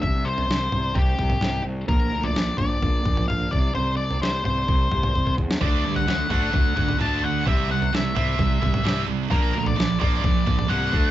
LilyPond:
<<
  \new Staff \with { instrumentName = "Lead electric guitar" } { \time 4/4 \key c \lydian \tempo 4 = 129 e''8 c''4. g'4. r8 | bes'8. d''8. d''4. f''8 d''8 | c''8 d''8 c''8 c''2 r8 | d''8. fis''8. fis''4. a''8 fis''8 |
e''8 fis''8 e''8 e''2 r8 | bes'8. d''8. d''4. fis''8. r16 | }
  \new Staff \with { instrumentName = "Clean electric guitar" } { \clef bass \time 4/4 \key c \lydian c8 g8 c8 g8 c'8 g8 c8 c'8 | bes,8 f8 d8 f8 bes8 f8 d8 c8 | c8 g8 c8 g8 c'8 g8 c8 c'8 | r1 |
r1 | r1 | }
  \new Staff \with { instrumentName = "Distorted electric guitar" } { \clef bass \time 4/4 \key c \lydian r1 | r1 | r1 | <d a d'>8 <d a>8 <d a>8 <d a d'>8 <d a>8 <d a>8 <d a d'>8 <d a>8 |
<c g c'>8 <c g>8 <c g>8 <c g c'>8 <c g>8 <c g>8 <c g c'>8 <c g>8 | <bes, f bes>8 <bes, f>8 <bes, f>8 <bes, f bes>8 <bes, f>8 <bes, f>8 <bes, f bes>8 <d a d'>8 | }
  \new Staff \with { instrumentName = "Fingered electric bass" } { \clef bass \time 4/4 \key c \lydian c,4 c,8 c,8 c,8 c,8 c,8 c,8 | bes,,8 d,8 bes,,8 bes,,8 bes,,8 bes,,8 bes,,8 c,8 | c,4 c,8 c,8 c,8 c,8 c,8 e,8 | d,8 g,8 d,8 d,8 d,8 d,8 d,4 |
c,4 c,8 c,8 c,8 c,8 c,8 c,8 | bes,,8 d,8 bes,,8 bes,,8 bes,,8 bes,,8 c,8 d,8 | }
  \new DrumStaff \with { instrumentName = "Drums" } \drummode { \time 4/4 <bd tomfh>8. tomfh16 sn8 <tomfh toml>8 <bd tomfh>8 <bd toml>16 <tomfh toml>16 <sn toml>4 | <bd tomfh>8. tomfh16 sn8 <bd tomfh toml>8 <bd tomfh>8 <bd toml>16 <tomfh toml>16 toml8 bd8 | tomfh8. tomfh16 sn8 <tomfh toml>8 <bd tomfh>8 <bd toml>16 <tomfh toml>16 bd16 bd16 bd16 sn16 | <bd tomfh>8. tomfh16 sn8 <bd tomfh toml>8 <bd tomfh>8 <bd toml>16 <tomfh toml>16 toml4 |
<bd tomfh>8. tomfh16 sn8 <tomfh toml>8 <bd tomfh>8 <bd toml>16 <tomfh toml>16 <sn toml>4 | <bd tomfh>8. tomfh16 sn8 <bd tomfh toml>8 <bd tomfh>8 <bd toml>16 <tomfh toml>16 toml8 bd8 | }
>>